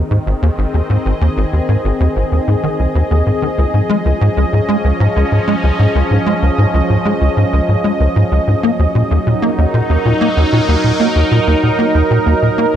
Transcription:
0.00 3.58 D#3 medium
0.00 3.58 C4 medium
0.00 9.56 G#4 medium
0.00 0.55 A#4 medium
0.00 12.76 D#5 medium
0.11 0.18 G#2 medium
0.26 0.34 G#1 loud
0.42 0.50 D#2 loud
0.58 0.66 G#1 loud
0.74 0.81 D#2 medium
0.90 0.97 G#2 medium
1.05 1.13 G#1 loud
1.21 1.29 D#2 loud
1.37 1.45 G#1 loud
1.53 1.60 D#2 medium
1.69 1.76 G#2 medium
1.84 1.92 G#1 loud
2.00 2.08 D#2 loud
2.16 2.24 G#1 medium
2.32 2.39 D#2 medium
2.48 2.55 G#2 medium
2.63 2.68 D#3 medium
2.79 2.87 C2 medium
2.95 3.02 D#2 loud
3.11 3.22 D#2 loud
3.26 3.31 G#2 medium
3.42 3.47 D#3 medium
3.58 3.66 C#2 loud
3.58 8.63 F3 medium
3.74 3.81 G#2 medium
3.81 10.65 C#4 medium
3.89 3.97 G#3 loud
4.05 4.13 C#2 medium
4.21 4.29 G#2 loud
4.37 4.44 C#2 loud
4.53 4.60 G#2 medium
4.68 4.76 G#3 loud
4.84 4.92 C#2 medium
5.00 5.08 G#2 loud
5.16 5.24 C#2 loud
5.32 5.39 G#2 medium
5.48 5.55 G#3 loud
5.63 5.71 C#2 loud
5.79 5.87 G#2 loud
5.95 6.03 C#2 loud
6.11 6.18 G#2 medium
6.26 6.34 G#3 loud
6.42 6.50 C#2 loud
6.58 6.66 G#2 loud
6.74 6.81 C#2 loud
6.90 6.97 G#2 medium
7.05 7.13 G#3 loud
7.21 7.29 C#2 loud
7.37 7.44 G#2 medium
7.53 7.60 C#2 loud
7.68 7.76 G#2 medium
7.84 7.92 G#3 loud
8.00 8.08 C#2 loud
8.16 8.24 G#2 loud
8.32 8.39 C#2 loud
8.47 8.55 G#2 medium
8.63 12.76 F#3 medium
8.63 8.71 A#3 loud
8.79 8.87 D#2 loud
8.95 9.02 A#2 medium
8.95 12.76 D#4 loud
9.11 9.18 D#2 loud
9.26 9.34 A#2 medium
9.26 12.76 A#4 medium
9.42 9.50 A#3 loud
9.58 9.66 D#2 loud
9.74 9.81 A#2 loud
9.89 9.97 D#2 loud
10.05 10.13 A#2 medium
10.21 10.29 A#3 loud
10.37 10.44 D#2 loud
10.52 10.60 A#2 loud
10.68 10.76 D#2 loud
10.84 10.92 A#2 medium
11.00 11.07 A#3 loud
11.15 11.23 D#2 loud
11.31 11.39 A#2 loud
11.47 11.55 D#2 loud
11.63 11.71 A#2 medium
11.79 11.86 A#3 loud
11.95 12.02 D#2 loud
12.11 12.18 A#2 loud
12.26 12.34 D#2 loud
12.42 12.50 A#2 medium
12.58 12.66 A#3 loud

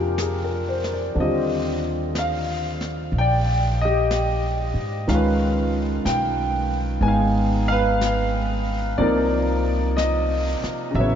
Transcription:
0.00 1.12 F2 medium
0.00 1.15 C3 soft
0.00 1.16 F3 soft
0.00 1.18 A#3 soft
0.00 1.19 D4 soft
0.00 1.20 F4 soft
0.00 0.29 G4 soft
0.00 0.43 A#4 medium
0.18 0.65 G#4 soft
0.18 brush sweep soft
0.18 snare soft
0.18 hi-hat pedal soft
0.44 0.86 A#4 soft
0.69 0.99 C5 soft
0.84 snare soft
0.93 1.28 D5 soft
1.15 3.09 D#2 medium
1.15 5.08 D3 soft
1.15 5.08 G3 soft
1.15 5.09 C4 soft
1.15 brush sweep soft
1.20 5.08 F4 soft
1.20 3.12 G4 soft
1.20 2.13 D#5 medium
2.15 3.11 F5 medium
2.15 brush sweep soft
2.15 snare soft
2.15 hi-hat pedal soft
2.81 snare soft
3.12 4.71 A#1 medium
3.12 brush sweep soft
3.18 5.08 D5 medium
3.18 3.83 G5 medium
3.81 5.08 G4 medium
3.81 5.06 D#5 medium
4.11 brush sweep soft
4.11 snare soft
4.11 hi-hat pedal soft
4.74 5.05 G#2 medium
5.07 6.01 C#2 medium
5.07 8.98 D#3 soft
5.07 6.99 G#3 soft
5.07 8.98 C#4 soft
5.07 8.99 F4 medium
5.07 6.09 F5 medium
5.07 brush sweep soft
5.07 snare soft
5.15 7.02 B4 medium
6.05 6.98 B1 medium
6.05 6.99 G5 medium
6.05 brush sweep soft
6.05 snare soft
6.05 hi-hat pedal soft
7.01 8.93 G#1 medium
7.01 8.97 G#3 soft
7.01 8.98 B3 soft
7.01 8.98 D#4 soft
7.01 7.63 G#5 medium
7.01 brush sweep soft
7.08 7.67 F5 medium
7.68 9.03 F5 loud
7.72 8.97 B4 medium
8.01 brush sweep soft
8.01 snare soft
8.01 hi-hat pedal soft
8.98 10.58 C2 medium
8.98 10.94 C3 medium
8.98 10.95 F3 soft
8.98 10.95 A#3 soft
8.98 10.95 D#4 medium
8.98 10.92 A#4 medium
8.98 9.99 D5 medium
8.98 brush sweep soft
9.97 10.98 D#5 medium
9.97 brush sweep soft
9.97 snare soft
9.97 hi-hat pedal soft
10.63 muted upright bass stroke soft
10.63 snare soft
10.91 11.15 A1 medium
10.91 11.15 C#3 soft
10.91 11.15 F#3 soft
10.95 11.15 B3 soft
10.95 11.15 E5 medium
10.95 brush sweep soft
11.00 11.15 E4 soft
11.00 11.15 C#5 medium

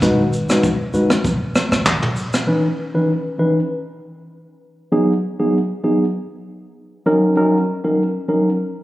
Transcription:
0.02 0.51 G#1 loud
0.02 0.22 G#3 loud
0.02 0.22 D#4 medium
0.02 0.22 F#4 medium
0.02 0.22 B4 loud
0.02 kick loud
0.02 hi-hat pedal medium
0.02 shaker medium
0.33 shaker medium
0.49 0.88 F#1 loud
0.49 0.67 G#3 medium
0.49 0.67 D#4 medium
0.49 0.67 F#4 medium
0.49 0.67 B4 medium
0.49 cross-stick medium
0.49 shaker medium
0.63 kick medium
0.63 shaker medium
0.94 1.20 D#1 medium
0.94 1.14 G#3 medium
0.94 1.14 D#4 medium
0.94 1.14 F#4 medium
0.94 1.14 B4 medium
0.94 shaker medium
1.10 cross-stick loud
1.10 shaker medium
1.25 1.66 D#1 loud
1.25 kick loud
1.25 shaker medium
1.55 cross-stick loud
1.55 shaker medium
1.72 1.99 G#1 medium
1.72 cross-stick medium
1.72 shaker medium
1.86 kick medium
1.86 cross-stick medium
1.86 clap medium
1.86 shaker medium
2.02 mid tom loud
2.16 open hi-hat medium
2.16 shaker medium
2.33 cross-stick medium
2.33 shaker medium
2.47 2.67 E3 medium
2.47 2.67 C#4 medium
2.47 2.67 D#4 medium
2.47 2.67 B4 medium
2.94 3.12 E3 medium
2.94 3.12 C#4 medium
2.94 3.12 D#4 medium
2.94 3.12 B4 medium
3.39 3.59 E3 medium
3.39 3.59 C#4 medium
3.39 3.59 D#4 medium
3.39 3.59 B4 medium
4.92 5.12 F#3 medium
4.92 5.12 B3 medium
4.92 5.12 D#4 medium
4.92 5.12 G#4 medium
5.39 5.57 F#3 medium
5.39 5.57 B3 medium
5.39 5.57 D#4 medium
5.39 5.57 G#4 medium
5.83 6.04 F#3 medium
5.83 6.04 B3 medium
5.83 6.04 D#4 medium
5.83 6.04 G#4 medium
7.06 7.34 F#3 medium
7.06 7.35 C#4 medium
7.06 7.35 D#4 medium
7.06 7.35 A#4 loud
7.36 7.57 F#3 medium
7.36 7.57 C#4 medium
7.36 7.57 D#4 medium
7.36 7.57 A#4 medium
7.84 8.02 F#3 medium
7.84 8.02 C#4 medium
7.84 8.02 D#4 medium
7.84 8.02 A#4 medium
8.28 8.48 F#3 medium
8.28 8.49 C#4 medium
8.28 8.49 D#4 medium
8.28 8.49 A#4 medium

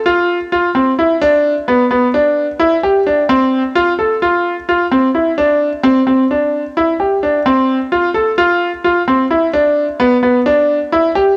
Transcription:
0.06 0.37 F4 medium
0.52 0.68 F4 medium
0.75 0.90 C4 medium
0.99 1.14 E4 medium
1.21 1.53 D4 medium
1.68 1.83 B3 medium
1.91 2.06 B3 medium
2.14 2.45 D4 medium
2.60 2.75 E4 medium
2.84 2.99 G4 medium
3.07 3.22 D4 medium
3.29 3.61 C4 medium
3.76 3.91 F4 medium
3.99 4.14 A4 medium
4.22 4.53 F4 medium
4.69 4.84 F4 medium
4.91 5.07 C4 medium
5.14 5.30 E4 medium
5.38 5.69 D4 medium
5.83 5.99 C4 medium
6.07 6.22 C4 medium
6.31 6.62 D4 medium
6.77 6.92 E4 medium
7.00 7.15 G4 medium
7.23 7.38 D4 medium
7.46 7.77 C4 medium
7.92 8.07 F4 medium
8.14 8.30 A4 medium
8.38 8.69 F4 medium
8.84 9.00 F4 medium
9.08 9.23 C4 medium
9.31 9.46 E4 medium
9.53 9.85 D4 medium
10.00 10.15 B3 medium
10.23 10.38 B3 medium
10.46 10.77 D4 medium
10.92 11.08 E4 medium
11.15 11.31 G4 medium

